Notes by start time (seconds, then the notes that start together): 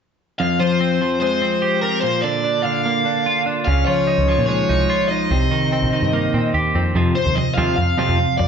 0.39 F2 F5
0.59 F3 C5
0.81 C4
1.01 F3
1.20 G#3 C5
1.42 C4
1.62 G4
1.81 C4 A#4
2.01 A#2 C5
2.21 D3 D5
2.44 D4
2.63 D3 F5
2.86 A#3
3.05 D4
3.26 F4
3.46 D4
3.65 C#2 C#3 F5
3.86 F3 C#5
4.07 D#4
4.18 C#2
4.28 F3
4.38 A#2
4.46 G#3 C#5
4.69 C2 D#4
4.90 F4
5.08 D#4 D#5
5.31 C2 C3
5.51 D#3
5.72 C4
5.82 A#1
5.93 D#3
6.02 G2
6.13 A#3
6.34 A#2 C4
6.54 D#2 G4
6.75 F2 C4
6.95 F2 C3 F3
7.15 F2 C5
7.26 D#2
7.35 F2 C3 D#5
7.54 D#2 F2 C3 F5
7.58 F3
7.76 F2 C3 F5
7.98 F2 C3 F3
8.09 F2
8.19 F2 C3
8.38 F2 C3 D5